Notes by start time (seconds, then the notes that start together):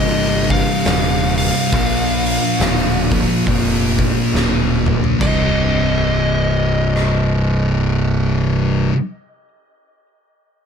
Already playing: C2 G2 C3
0.00 G1 G2 C3 D#5
0.50 F5, kick, open hi-hat
0.85 D#1, snare, open hi-hat
1.38 F5, open hi-hat
1.72 A#1 A#2 F3 A#3, kick, open hi-hat
2.25 open hi-hat
2.60 D1, snare, open hi-hat
3.12 A#2 F3 A#3, kick, open hi-hat
3.46 F1 A#2 F3 A#3, kick, open hi-hat
3.99 kick, open hi-hat
4.34 D1, snare
4.86 mid tom
5.04 floor tom
5.19 C1 C2 G2 C3 D#5, kick, crash
6.96 cross-stick